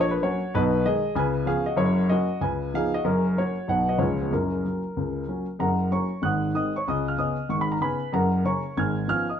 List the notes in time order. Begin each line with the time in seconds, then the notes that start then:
Already playing: A#1 A#2
0.01 C#5
0.11 B4
0.22 F#3 A#3 C#4 F#4 C#5
0.54 B1 B2 D#4 B4
0.85 D#3 G#3 D#4 G#4 D#5
1.15 C#2 C#3 B4 G#5
1.46 F3 B3 C#4 G#4 F5
1.66 F#4 D#5
1.76 F#1 F#2 F#4 C#5
2.09 F#3 A#3 C#4 F#4 D#5
2.41 C#2 C#3 B4 G#5
2.74 F3 B3 D#4 G#4 F5
2.94 F#4 D#5
3.04 F#1 F#2 C#4 A#4
3.38 F#3 A#3 C#4 F#4 C#5
3.68 B1 B2 F#3 B3 D#4 B4 F#5
3.89 F#4 D#5
3.98 C#2 C#3 F3 G#3 C#4 F4 C#5
4.21 B3 G#4
4.31 F#1 F#2 C#4 A#4
4.65 F#3 A#3 C#4
4.97 C#2 C#3
5.28 F#3 A#3 C#4
5.59 F#1 F#2 A#4 F#5 A#5
5.90 F#3 A#3 C#4 C#5 A#5 C#6
6.22 G#1 G#2 F#5 D#6 F#6
6.54 D#3 G#3 C4 D#5 D#6
6.76 C#5 C#6
6.87 C#2 C#3 D#5 D#6
7.08 F5 F6
7.18 C#3 B3 C#4 D#5 D#6
7.49 G#1 G#2 C#6
7.61 B5
7.72 A#5
7.81 C#3 B3 C#4 B4 G#5 B5
8.13 F#1 F#2 A#4 F#5 A#5
8.44 C#3 A#3 C#4 C#5 A#5 C#6
8.77 G#1 G#2 G#5 F6 G#6
9.08 F3 B3 C#4 F5 F6
9.29 D#5 D#6